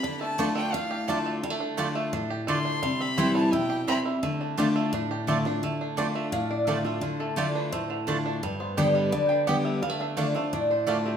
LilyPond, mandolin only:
\new Staff \with { instrumentName = "Mandolin" } { \time 4/4 \key d \dorian \tempo 4 = 172 r4 <a f' d'' a''>16 r4. r16 <a f' d'' a''>16 r8. | r4 <a f' d'' a''>16 r4. r16 <a f' d'' a''>16 r8. | r4 <c' e' c'' g''>16 r4. r16 <c' e' c'' g''>16 r8. | r4 <a f' d'' a''>16 r4. r16 <a f' d'' a''>16 r8. |
r4 <a f' d'' a''>16 r4. r16 <a f' d'' a''>16 r8. | r4 <a f' d'' a''>16 r4. r16 <a f' d'' a''>16 r8. | r4 <b g' d'' g''>16 r4. r16 <b g' d'' g''>16 r8. | r4 <a f' d'' a''>16 r4. r16 <a f' d'' a''>16 r8. | }